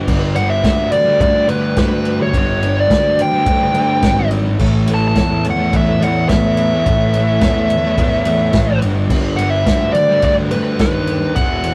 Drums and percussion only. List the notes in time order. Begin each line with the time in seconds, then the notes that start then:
0.08 kick, crash
0.36 ride
0.64 kick, snare, ride
0.92 ride
1.20 kick, ride
1.49 ride
1.76 kick, snare, ride
2.05 ride
2.33 kick, ride
2.63 ride
2.90 kick, snare, ride
3.19 ride
3.46 kick, ride
3.74 ride
4.02 kick, snare, ride
4.31 ride
4.59 kick, crash
4.87 ride
5.15 kick, snare, ride
5.44 ride
5.73 kick, ride
6.02 ride
6.29 kick, snare, ride
6.57 ride
6.86 kick, ride
7.14 ride
7.41 kick, snare, ride
7.70 ride
7.98 kick, ride
8.25 ride
8.53 kick, snare, ride
8.82 ride
9.10 kick, crash
9.38 ride
9.66 kick, snare, ride
9.95 ride
10.22 kick, ride
10.51 ride
10.79 kick, snare, ride
11.07 ride
11.36 kick, ride
11.64 ride